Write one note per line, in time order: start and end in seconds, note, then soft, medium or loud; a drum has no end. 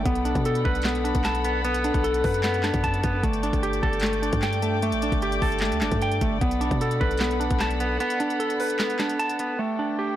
0.00 6.37 A4 medium
0.06 0.34 B1 loud
0.06 0.84 B3 loud
0.06 9.55 D5 medium
0.06 3.20 F#5 medium
0.06 3.20 B5 medium
0.06 kick loud
0.06 closed hi-hat medium
0.15 closed hi-hat medium
0.25 1.03 D4 medium
0.25 closed hi-hat medium
0.35 0.64 B2 loud
0.35 kick medium
0.35 closed hi-hat medium
0.45 1.65 A4 medium
0.45 closed hi-hat medium
0.55 closed hi-hat medium
0.65 1.13 B1 loud
0.65 1.44 B4 medium
0.65 kick loud
0.75 closed hi-hat soft
0.82 1.44 B3 medium
0.82 snare loud
0.82 clap loud
0.82 closed hi-hat medium
0.88 closed hi-hat medium
0.95 closed hi-hat medium
1.04 1.83 D4 medium
1.04 closed hi-hat medium
1.15 1.91 B1 loud
1.15 kick loud
1.15 closed hi-hat medium
1.24 2.44 A5 medium
1.24 snare loud
1.24 clap medium
1.24 closed hi-hat medium
1.35 closed hi-hat medium
1.44 1.63 B3 medium
1.44 closed hi-hat medium
1.65 2.42 B3 loud
1.65 closed hi-hat medium
1.74 closed hi-hat medium
1.84 2.62 D4 medium
1.84 closed hi-hat medium
1.94 2.23 B1 loud
1.94 kick loud
1.94 closed hi-hat soft
2.04 3.23 A4 medium
2.04 closed hi-hat medium
2.14 closed hi-hat medium
2.24 2.72 F#2 loud
2.24 3.24 B4 medium
2.24 kick loud
2.24 open hi-hat medium
2.34 closed hi-hat medium
2.43 3.03 B3 medium
2.43 snare loud
2.43 clap loud
2.43 closed hi-hat medium
2.54 closed hi-hat medium
2.63 3.23 D4 medium
2.63 snare medium
2.63 clap medium
2.63 closed hi-hat medium
2.74 3.02 F#2 loud
2.74 kick loud
2.74 closed hi-hat medium
2.84 3.23 A5 loud
2.84 kick medium
2.84 closed hi-hat medium
2.94 closed hi-hat medium
3.03 3.23 F#2 loud
3.03 3.24 B3 medium
3.03 kick loud
3.03 closed hi-hat medium
3.23 3.52 G1 loud
3.23 4.01 A3 medium
3.23 6.38 G5 medium
3.23 6.38 D6 medium
3.23 kick loud
3.23 closed hi-hat medium
3.33 closed hi-hat medium
3.43 4.21 D4 medium
3.43 closed hi-hat medium
3.53 3.82 G1 loud
3.53 kick loud
3.53 closed hi-hat medium
3.63 4.82 G4 medium
3.63 closed hi-hat medium
3.73 closed hi-hat medium
3.83 4.31 G1 loud
3.83 5.02 A4 medium
3.83 kick loud
3.93 closed hi-hat soft
4.00 4.61 A3 medium
4.00 snare loud
4.00 clap loud
4.00 closed hi-hat medium
4.06 closed hi-hat medium
4.13 closed hi-hat medium
4.22 5.02 D4 medium
4.22 closed hi-hat medium
4.33 4.94 G2 loud
4.33 kick loud
4.33 closed hi-hat medium
4.42 5.62 G5 medium
4.42 snare loud
4.42 clap medium
4.42 closed hi-hat medium
4.53 closed hi-hat medium
4.62 4.82 A3 medium
4.62 closed hi-hat medium
4.82 5.61 A3 loud
4.82 closed hi-hat medium
4.92 5.11 A1 loud
4.92 closed hi-hat medium
5.02 5.80 D4 medium
5.02 closed hi-hat medium
5.12 5.41 G1 loud
5.12 kick medium
5.12 closed hi-hat medium
5.22 6.42 G4 loud
5.22 closed hi-hat medium
5.32 closed hi-hat medium
5.42 5.73 G1 loud
5.42 6.41 A4 medium
5.42 kick loud
5.42 open hi-hat medium
5.52 closed hi-hat soft
5.59 6.21 A3 medium
5.59 snare loud
5.59 clap loud
5.59 closed hi-hat medium
5.65 closed hi-hat medium
5.72 5.83 D2 loud
5.72 closed hi-hat medium
5.81 5.91 G1 loud
5.81 6.41 D4 medium
5.81 snare medium
5.81 clap medium
5.81 closed hi-hat medium
5.92 6.20 G2 loud
5.92 kick loud
5.92 closed hi-hat medium
6.02 6.42 G5 loud
6.02 closed hi-hat medium
6.12 closed hi-hat medium
6.21 6.41 G1 loud
6.21 6.41 A3 medium
6.21 kick loud
6.21 closed hi-hat medium
6.41 6.70 B1 loud
6.41 7.20 B3 loud
6.41 9.56 A4 medium
6.41 9.56 F#5 medium
6.41 9.56 B5 medium
6.41 kick loud
6.41 closed hi-hat medium
6.51 closed hi-hat medium
6.61 7.39 D4 medium
6.61 closed hi-hat medium
6.71 7.00 B2 loud
6.71 kick medium
6.71 closed hi-hat soft
6.81 8.00 A4 medium
6.81 closed hi-hat medium
6.91 closed hi-hat medium
7.01 7.49 B1 loud
7.01 7.80 B4 medium
7.01 kick loud
7.11 closed hi-hat soft
7.18 7.79 B3 medium
7.18 snare loud
7.18 clap loud
7.18 closed hi-hat medium
7.24 closed hi-hat medium
7.31 closed hi-hat medium
7.40 8.19 D4 medium
7.40 closed hi-hat medium
7.50 7.98 B1 loud
7.50 kick loud
7.50 closed hi-hat medium
7.60 8.80 A5 medium
7.60 snare medium
7.60 clap medium
7.60 closed hi-hat medium
7.71 closed hi-hat medium
7.80 7.99 B3 medium
7.80 closed hi-hat medium
8.00 8.78 B3 loud
8.00 closed hi-hat medium
8.10 closed hi-hat medium
8.20 8.98 D4 medium
8.20 closed hi-hat medium
8.30 closed hi-hat soft
8.40 9.59 A4 medium
8.40 closed hi-hat medium
8.50 closed hi-hat medium
8.60 9.59 B4 medium
8.60 open hi-hat medium
8.70 closed hi-hat medium
8.79 9.38 B3 medium
8.79 snare loud
8.79 clap medium
8.79 closed hi-hat medium
8.90 closed hi-hat medium
8.99 9.59 D4 medium
8.99 snare medium
8.99 clap medium
8.99 closed hi-hat medium
9.09 closed hi-hat medium
9.19 9.59 A5 loud
9.19 closed hi-hat medium
9.29 closed hi-hat medium
9.39 9.59 B3 medium
9.39 closed hi-hat medium
9.59 10.16 A3 medium
9.59 10.16 D4 medium
9.59 10.16 G4 medium
9.59 10.16 A4 medium
9.59 10.16 G5 medium
9.79 10.16 D4 medium
9.99 10.16 G4 medium